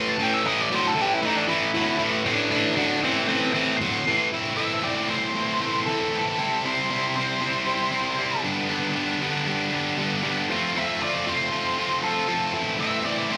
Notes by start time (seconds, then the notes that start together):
Already playing: A2 E3
0.09 A5
0.19 A2 E3 G5
0.34 E5
0.44 A2 E3 D#5
0.62 D5
0.71 A2 F#3
0.75 C5
0.87 A4
0.95 A2 E3
1.01 G4
1.14 E4
1.22 A2 E3 D#4
1.36 D4
1.48 A2 E3 E4
1.74 A2 F#3
1.98 A2 E3
2.25 A2 E3 A5 D6
2.50 A2 E3 A5 D6
2.75 A2 F#3 A5 D6
3.02 A2 E3 G5 C6
3.28 A2 E3 G5 C6
3.53 A2 E3 G5 C6
3.77 A2 C6
3.82 F#3
4.07 A2 E3
4.32 A2 E3 A3 C4 E4
4.57 A2 E3 A3 C4 E4 E5
4.82 A2 E3 A3 C4 E4 D5
5.08 A2 E3 A3 C4 E4 C5
5.35 A2 E3 A3 C4 E4
5.60 A2 E3 A3 C4 E4
5.86 A2 E3 A3 C4 E4 A4
6.13 A2 E3 A3 C4 E4
6.38 C3 G3 C4 E4
6.65 C3 G3 C4 E4 C5
6.90 C3 G3 C4 E4
7.16 C3 G3 C4 E4 C5
7.41 C3 G3 C4 E4
7.66 C3 G3 C4 E4
7.91 C3 G3 C4 E4
8.18 C3 G3 C4 E4
8.44 G2 D3 G3 B3 D4
8.69 G2 D3 G3 B3 D4
8.96 G2 D3 G3 B3 D4
9.22 G2 D3 G3 B3 D4
9.46 G2 D3 G3 B3 D4
9.72 G2 D3 G3 B3 D4
9.98 G2 D3 G3 B3 D4
10.22 G2 D3 G3 B3 D4
10.50 F3 A3 C4 F4
10.76 F3 A3 C4 F4 E5
11.00 F3 A3 C4 F4 D5
11.26 F3 A3 C4 F4 C5
11.51 F3 A3 C4 F4
11.78 F3 A3 C4 F4
12.03 F3 A3 C4 F4 A4
12.28 F3 A3 C4 F4
12.53 A2 E3 A3 C4 E4
12.78 A2 E3 A3 C4 E4 E5
13.04 A2 E3 A3 C4 E4 D5
13.30 A2 E3 A3 C4 E4 C5